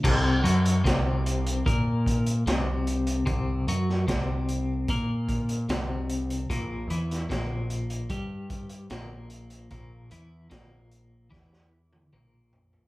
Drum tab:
CC |x---------------|----------------|----------------|----------------|
HH |--xxx-xxx-xxx-xx|x-x-x-x-x-xxx-xx|x-xxx-xxx-xxx-xx|x-x-x-x---------|
SD |----o-------o---|---oo-------o---|---oo-------o---|----o---oo------|
T1 |----------------|----------------|----------------|-----------o----|
T2 |----------------|----------------|----------------|------------o---|
FT |----------------|----------------|----------------|--------------oo|
BD |o---o---o-o-----|o---o---o-o-----|o---o---o-o-----|o---o---o-------|